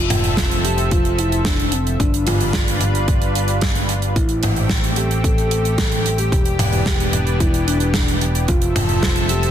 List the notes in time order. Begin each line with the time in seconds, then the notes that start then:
Already playing: F1 F3 C4 F4 A4 E5
0.10 closed hi-hat, mid tom
0.24 closed hi-hat
0.37 kick, snare, closed hi-hat
0.51 closed hi-hat
0.65 G4, closed hi-hat
0.78 closed hi-hat
0.91 F4, kick, closed hi-hat
1.05 closed hi-hat
1.19 E4, closed hi-hat
1.32 closed hi-hat
1.45 D4, kick, snare, closed hi-hat
1.60 closed hi-hat
1.72 C4, closed hi-hat
1.87 closed hi-hat
2.00 G1 G3 D4 F4 B4, kick, closed hi-hat
2.14 closed hi-hat
2.27 F4, closed hi-hat, mid tom
2.40 closed hi-hat
2.53 kick, snare, closed hi-hat
2.68 closed hi-hat
2.81 closed hi-hat, mid tom
2.95 closed hi-hat
3.08 kick, closed hi-hat
3.22 closed hi-hat
3.35 closed hi-hat
3.48 closed hi-hat
3.61 kick, snare, closed hi-hat
3.75 closed hi-hat
3.89 closed hi-hat
4.02 closed hi-hat
4.16 A1 A3 C4 E4 G4, kick, closed hi-hat
4.29 closed hi-hat
4.43 closed hi-hat, mid tom
4.56 closed hi-hat
4.69 kick, snare, closed hi-hat
4.84 closed hi-hat
4.96 G4, closed hi-hat
5.11 closed hi-hat
5.24 A4, kick, closed hi-hat
5.38 closed hi-hat
5.51 closed hi-hat
5.65 closed hi-hat
5.78 A4, kick, snare, closed hi-hat
5.92 closed hi-hat
6.06 closed hi-hat
6.18 G4, closed hi-hat
6.32 E1 E3 B3 D4, kick, closed hi-hat
6.45 closed hi-hat
6.59 closed hi-hat, mid tom
6.73 G4, closed hi-hat
6.86 kick, snare, closed hi-hat
7.00 closed hi-hat
7.13 closed hi-hat, mid tom
7.27 closed hi-hat
7.40 E4, kick, closed hi-hat
7.54 closed hi-hat
7.67 D4, closed hi-hat
7.80 closed hi-hat
7.94 kick, snare, closed hi-hat
8.08 closed hi-hat
8.21 closed hi-hat
8.35 closed hi-hat
8.48 F1 F3 C4 F4 A4 E5, kick, closed hi-hat
8.62 closed hi-hat
8.76 closed hi-hat, mid tom
8.89 closed hi-hat
9.03 kick, snare, closed hi-hat
9.16 closed hi-hat
9.29 G4, closed hi-hat
9.43 closed hi-hat